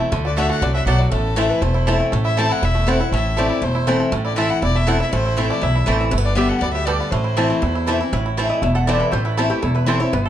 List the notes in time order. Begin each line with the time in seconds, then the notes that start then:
Already playing: E3 A3 C4 E4 A4
0.00 A3
0.12 D2 D3 A3
0.25 F#4 D5
0.36 D3 A3 D4 F#4 D5 E5 A5
0.50 A3 F#5
0.62 C2 F#2 F#4 D5
0.75 D4 E5
0.86 B1 B2 F#3 A3 F#4 D5 F#5 A5
0.99 F#4 D5
1.11 A1 A2 A3 A4
1.36 E3 A3 C4 E4 C5 A5
1.49 A4 B4
1.61 E1 E2 A3 C5
1.74 E4
1.87 E3 A3 C4 E4 A4 C5 A5
2.00 A3
2.12 A1 A2 A3
2.25 E4 E5
2.37 E3 A3 C4 E4 C5 A5
2.49 E4 F#5
2.62 E1 E2 E4 E5
2.75 A3
2.87 E3 A3 C4 E4 C5 F#5 A5
3.00 C4 E4
3.12 A1 A2 A3 E5
3.37 E3 A3 C4 E4 C5 D5 A5
3.49 E4
3.62 E1 E2 A3 C5
3.75 E4
3.87 E3 A3 C4 E4 C5 A5
4.00 A4
4.12 A1 A2 A3
4.25 E4 D5
4.36 E3 A3 C4 E4 C5 E5 A5
4.50 E4 F#5
4.62 E1 E2 E4 D5
4.75 A3 E5
4.87 E3 A3 C4 E4 C5 F#5 A5
5.00 C4 E4 E5
5.12 A1 A2 A3 C5
5.26 E4
5.37 E3 A3 C4 E4 C5 A5
5.50 A3 D5
5.61 B1 E2 E4 E5
5.75 E4
5.86 A1 E3 A3 C4 E4 C5 A5
6.01 E4
6.11 G1 G2 A3
6.18 B3
6.25 D4 D5
6.35 D3 G3 B3 G4 D5 E5 G5
6.49 A4 F#5
6.61 D2 F#2 B3 D5
6.73 G4 E5
6.86 G2 B3 G4 A4 D5 G5
7.00 B3
7.10 A1 A2 A3 C5
7.24 E4
7.37 E3 A3 C4 E4 C5 A5
7.50 A3
7.62 E2 E4
7.75 E4
7.87 E3 A3 C4 E4 C5 A5
8.01 C4 E4
8.13 A1 A2 E4
8.26 E4
8.37 E3 A3 C4 E4 C5 A5
8.49 E4 D#5
8.62 E1 E2 A3 E5
8.75 A4 F#5
8.87 E3 A3 C4 E4 C5 D5 A5
9.00 A4 B4
9.12 A1 A2 A3 C5
9.25 E4 B4
9.37 E3 A3 C4 E4 A4 C5 A5
9.50 A3 C4 E4 G4
9.62 E1 E2 E4 A4
9.75 E4 B4
9.86 E3 A3 C4 E4 A4 C5 A5
10.00 C4 E4 C#5
10.13 G1 G2 B3 B4
10.24 A4 C5